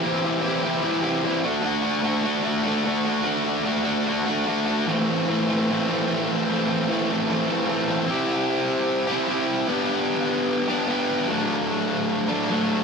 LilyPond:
\new Staff \with { instrumentName = "Distorted electric guitar" } { \time 4/4 \key d \mixolydian \tempo 4 = 149 <e c' e' g'>8 <c' e' g'>8 <e c' e' g'>8 <e c' e' g'>8 <e c' e' g'>8 <e c' e' g'>8 <e c' e' g'>8 <a d' fis'>8 | <a d' fis'>8 <d' fis'>8 <a d' fis'>8 <a d' fis'>8 <a d' fis'>8 <a d' fis'>8 <a d' fis'>8 <d' fis'>8 | <a d' fis'>8 <d' fis'>8 <a d' fis'>8 <a d' fis'>8 <a d' fis'>8 <a d' fis'>8 <a d' fis'>8 <d' fis'>8 | <e a c'>8 <a c'>8 <e a c'>8 <e a c'>8 <e a c'>8 <e a c'>8 <e a c'>8 <a c'>8 |
<e a c'>8 <a c'>8 <e a c'>8 <e a c'>8 <e a c'>8 <e a c'>8 <e a c'>8 <a c'>8 | <c' e' g'>2~ <c' e' g'>8 <c' e' g'>8 <c' e' g'>4 | <b d' g'>2~ <b d' g'>8 <b d' g'>8 <b d' g'>4 | <fis a d'>2~ <fis a d'>8 <fis a d'>8 <fis a d'>4 | }